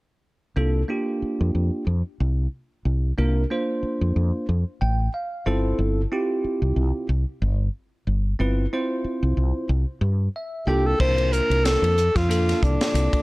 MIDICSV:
0, 0, Header, 1, 6, 480
1, 0, Start_track
1, 0, Tempo, 651466
1, 420, Time_signature, 4, 2, 24, 8
1, 9743, End_track
2, 0, Start_track
2, 0, Title_t, "Alto saxophone"
2, 0, Program_c, 0, 65
2, 7861, Note_on_c, 0, 67, 70
2, 8001, Note_on_c, 0, 69, 77
2, 8012, Note_off_c, 0, 67, 0
2, 8102, Note_off_c, 0, 69, 0
2, 8107, Note_on_c, 0, 72, 93
2, 8344, Note_on_c, 0, 70, 83
2, 8355, Note_off_c, 0, 72, 0
2, 8581, Note_on_c, 0, 69, 89
2, 8592, Note_off_c, 0, 70, 0
2, 8959, Note_on_c, 0, 65, 79
2, 8970, Note_off_c, 0, 69, 0
2, 9309, Note_on_c, 0, 62, 70
2, 9320, Note_off_c, 0, 65, 0
2, 9743, Note_off_c, 0, 62, 0
2, 9743, End_track
3, 0, Start_track
3, 0, Title_t, "Tine electric piano"
3, 0, Program_c, 1, 4
3, 412, Note_on_c, 1, 58, 60
3, 416, Note_on_c, 1, 62, 52
3, 422, Note_on_c, 1, 65, 50
3, 422, Note_on_c, 1, 69, 64
3, 597, Note_off_c, 1, 58, 0
3, 599, Note_off_c, 1, 62, 0
3, 602, Note_off_c, 1, 65, 0
3, 602, Note_off_c, 1, 69, 0
3, 652, Note_on_c, 1, 58, 58
3, 655, Note_on_c, 1, 62, 57
3, 661, Note_on_c, 1, 65, 55
3, 665, Note_on_c, 1, 67, 63
3, 1353, Note_off_c, 1, 58, 0
3, 1354, Note_off_c, 1, 62, 0
3, 1357, Note_off_c, 1, 65, 0
3, 1359, Note_off_c, 1, 67, 0
3, 2340, Note_on_c, 1, 58, 62
3, 2342, Note_on_c, 1, 62, 60
3, 2346, Note_on_c, 1, 65, 51
3, 2347, Note_on_c, 1, 70, 67
3, 2524, Note_off_c, 1, 58, 0
3, 2525, Note_off_c, 1, 62, 0
3, 2527, Note_off_c, 1, 65, 0
3, 2527, Note_off_c, 1, 70, 0
3, 2580, Note_on_c, 1, 58, 59
3, 2585, Note_on_c, 1, 62, 54
3, 2588, Note_on_c, 1, 65, 60
3, 2590, Note_on_c, 1, 72, 67
3, 3279, Note_off_c, 1, 58, 0
3, 3281, Note_off_c, 1, 62, 0
3, 3283, Note_off_c, 1, 65, 0
3, 3284, Note_off_c, 1, 72, 0
3, 3544, Note_on_c, 1, 79, 57
3, 3770, Note_off_c, 1, 79, 0
3, 3787, Note_on_c, 1, 77, 50
3, 4011, Note_off_c, 1, 77, 0
3, 4024, Note_on_c, 1, 60, 69
3, 4024, Note_on_c, 1, 64, 73
3, 4026, Note_on_c, 1, 65, 64
3, 4028, Note_on_c, 1, 72, 66
3, 4031, Note_on_c, 1, 69, 84
3, 4252, Note_off_c, 1, 72, 0
3, 4422, Note_off_c, 1, 60, 0
3, 4422, Note_off_c, 1, 64, 0
3, 4423, Note_off_c, 1, 65, 0
3, 4426, Note_off_c, 1, 69, 0
3, 4508, Note_on_c, 1, 60, 65
3, 4508, Note_on_c, 1, 64, 59
3, 4512, Note_on_c, 1, 65, 62
3, 4515, Note_on_c, 1, 67, 76
3, 5203, Note_off_c, 1, 60, 0
3, 5203, Note_off_c, 1, 64, 0
3, 5205, Note_off_c, 1, 65, 0
3, 5207, Note_off_c, 1, 67, 0
3, 6183, Note_on_c, 1, 60, 67
3, 6188, Note_on_c, 1, 64, 57
3, 6192, Note_on_c, 1, 65, 58
3, 6196, Note_on_c, 1, 71, 71
3, 6367, Note_off_c, 1, 60, 0
3, 6369, Note_off_c, 1, 64, 0
3, 6371, Note_off_c, 1, 65, 0
3, 6373, Note_off_c, 1, 71, 0
3, 6431, Note_on_c, 1, 60, 62
3, 6431, Note_on_c, 1, 64, 64
3, 6435, Note_on_c, 1, 65, 61
3, 6437, Note_on_c, 1, 72, 72
3, 7124, Note_off_c, 1, 60, 0
3, 7124, Note_off_c, 1, 64, 0
3, 7126, Note_off_c, 1, 65, 0
3, 7126, Note_off_c, 1, 72, 0
3, 7633, Note_on_c, 1, 76, 51
3, 7853, Note_off_c, 1, 76, 0
3, 7865, Note_on_c, 1, 58, 71
3, 7866, Note_on_c, 1, 62, 69
3, 7867, Note_on_c, 1, 79, 61
3, 7871, Note_on_c, 1, 65, 67
3, 7874, Note_on_c, 1, 69, 80
3, 8064, Note_off_c, 1, 58, 0
3, 8064, Note_off_c, 1, 62, 0
3, 8066, Note_off_c, 1, 65, 0
3, 8068, Note_off_c, 1, 69, 0
3, 8090, Note_off_c, 1, 79, 0
3, 8098, Note_on_c, 1, 58, 57
3, 8105, Note_on_c, 1, 62, 49
3, 8108, Note_on_c, 1, 65, 47
3, 8108, Note_on_c, 1, 70, 64
3, 8795, Note_off_c, 1, 58, 0
3, 8798, Note_off_c, 1, 62, 0
3, 8800, Note_off_c, 1, 65, 0
3, 8800, Note_off_c, 1, 70, 0
3, 9054, Note_on_c, 1, 58, 65
3, 9057, Note_on_c, 1, 62, 64
3, 9061, Note_on_c, 1, 65, 60
3, 9066, Note_on_c, 1, 69, 67
3, 9743, Note_off_c, 1, 58, 0
3, 9743, Note_off_c, 1, 62, 0
3, 9743, Note_off_c, 1, 65, 0
3, 9743, Note_off_c, 1, 69, 0
3, 9743, End_track
4, 0, Start_track
4, 0, Title_t, "Fretless electric bass"
4, 0, Program_c, 2, 35
4, 416, Note_on_c, 2, 36, 72
4, 608, Note_off_c, 2, 36, 0
4, 1036, Note_on_c, 2, 41, 65
4, 1120, Note_off_c, 2, 41, 0
4, 1140, Note_on_c, 2, 41, 66
4, 1247, Note_off_c, 2, 41, 0
4, 1376, Note_on_c, 2, 41, 70
4, 1485, Note_off_c, 2, 41, 0
4, 1623, Note_on_c, 2, 36, 77
4, 1813, Note_off_c, 2, 36, 0
4, 2102, Note_on_c, 2, 36, 68
4, 2293, Note_off_c, 2, 36, 0
4, 2345, Note_on_c, 2, 36, 76
4, 2535, Note_off_c, 2, 36, 0
4, 2957, Note_on_c, 2, 41, 57
4, 3042, Note_off_c, 2, 41, 0
4, 3065, Note_on_c, 2, 41, 69
4, 3172, Note_off_c, 2, 41, 0
4, 3306, Note_on_c, 2, 41, 72
4, 3413, Note_off_c, 2, 41, 0
4, 3547, Note_on_c, 2, 33, 84
4, 3737, Note_off_c, 2, 33, 0
4, 4026, Note_on_c, 2, 31, 69
4, 4217, Note_off_c, 2, 31, 0
4, 4263, Note_on_c, 2, 31, 80
4, 4455, Note_off_c, 2, 31, 0
4, 4877, Note_on_c, 2, 36, 63
4, 4963, Note_off_c, 2, 36, 0
4, 4983, Note_on_c, 2, 36, 68
4, 5091, Note_off_c, 2, 36, 0
4, 5224, Note_on_c, 2, 36, 79
4, 5332, Note_off_c, 2, 36, 0
4, 5466, Note_on_c, 2, 31, 82
4, 5657, Note_off_c, 2, 31, 0
4, 5946, Note_on_c, 2, 31, 72
4, 6137, Note_off_c, 2, 31, 0
4, 6187, Note_on_c, 2, 31, 77
4, 6377, Note_off_c, 2, 31, 0
4, 6798, Note_on_c, 2, 36, 60
4, 6883, Note_off_c, 2, 36, 0
4, 6904, Note_on_c, 2, 36, 67
4, 7011, Note_off_c, 2, 36, 0
4, 7141, Note_on_c, 2, 36, 81
4, 7250, Note_off_c, 2, 36, 0
4, 7376, Note_on_c, 2, 43, 81
4, 7570, Note_off_c, 2, 43, 0
4, 7861, Note_on_c, 2, 36, 74
4, 8052, Note_off_c, 2, 36, 0
4, 8102, Note_on_c, 2, 36, 76
4, 8399, Note_off_c, 2, 36, 0
4, 8472, Note_on_c, 2, 36, 73
4, 8664, Note_off_c, 2, 36, 0
4, 8710, Note_on_c, 2, 41, 66
4, 8902, Note_off_c, 2, 41, 0
4, 8956, Note_on_c, 2, 41, 79
4, 9229, Note_off_c, 2, 41, 0
4, 9302, Note_on_c, 2, 36, 77
4, 9408, Note_off_c, 2, 36, 0
4, 9535, Note_on_c, 2, 36, 89
4, 9644, Note_off_c, 2, 36, 0
4, 9743, End_track
5, 0, Start_track
5, 0, Title_t, "Muted fretless electric bass strokes"
5, 901, Note_on_c, 9, 29, 31
5, 974, Note_off_c, 9, 29, 0
5, 2820, Note_on_c, 9, 29, 35
5, 2893, Note_off_c, 9, 29, 0
5, 4747, Note_on_c, 9, 29, 35
5, 4821, Note_off_c, 9, 29, 0
5, 6663, Note_on_c, 9, 29, 35
5, 6737, Note_off_c, 9, 29, 0
5, 9743, End_track
6, 0, Start_track
6, 0, Title_t, "Drums"
6, 8103, Note_on_c, 9, 49, 77
6, 8105, Note_on_c, 9, 36, 93
6, 8177, Note_off_c, 9, 49, 0
6, 8178, Note_off_c, 9, 36, 0
6, 8239, Note_on_c, 9, 51, 50
6, 8312, Note_off_c, 9, 51, 0
6, 8347, Note_on_c, 9, 44, 78
6, 8421, Note_off_c, 9, 44, 0
6, 8483, Note_on_c, 9, 51, 48
6, 8557, Note_off_c, 9, 51, 0
6, 8587, Note_on_c, 9, 44, 80
6, 8587, Note_on_c, 9, 51, 77
6, 8590, Note_on_c, 9, 38, 95
6, 8660, Note_off_c, 9, 44, 0
6, 8660, Note_off_c, 9, 51, 0
6, 8663, Note_off_c, 9, 38, 0
6, 8723, Note_on_c, 9, 51, 60
6, 8797, Note_off_c, 9, 51, 0
6, 8825, Note_on_c, 9, 44, 76
6, 8899, Note_off_c, 9, 44, 0
6, 8958, Note_on_c, 9, 36, 67
6, 8962, Note_on_c, 9, 51, 54
6, 8965, Note_on_c, 9, 38, 29
6, 9032, Note_off_c, 9, 36, 0
6, 9035, Note_off_c, 9, 51, 0
6, 9038, Note_off_c, 9, 38, 0
6, 9068, Note_on_c, 9, 44, 70
6, 9068, Note_on_c, 9, 51, 77
6, 9142, Note_off_c, 9, 44, 0
6, 9142, Note_off_c, 9, 51, 0
6, 9203, Note_on_c, 9, 51, 58
6, 9206, Note_on_c, 9, 38, 26
6, 9277, Note_off_c, 9, 51, 0
6, 9280, Note_off_c, 9, 38, 0
6, 9304, Note_on_c, 9, 36, 77
6, 9309, Note_on_c, 9, 44, 75
6, 9377, Note_off_c, 9, 36, 0
6, 9382, Note_off_c, 9, 44, 0
6, 9438, Note_on_c, 9, 51, 55
6, 9441, Note_on_c, 9, 38, 95
6, 9512, Note_off_c, 9, 51, 0
6, 9515, Note_off_c, 9, 38, 0
6, 9543, Note_on_c, 9, 44, 73
6, 9543, Note_on_c, 9, 51, 73
6, 9617, Note_off_c, 9, 44, 0
6, 9617, Note_off_c, 9, 51, 0
6, 9675, Note_on_c, 9, 36, 71
6, 9677, Note_on_c, 9, 51, 56
6, 9743, Note_off_c, 9, 36, 0
6, 9743, Note_off_c, 9, 51, 0
6, 9743, End_track
0, 0, End_of_file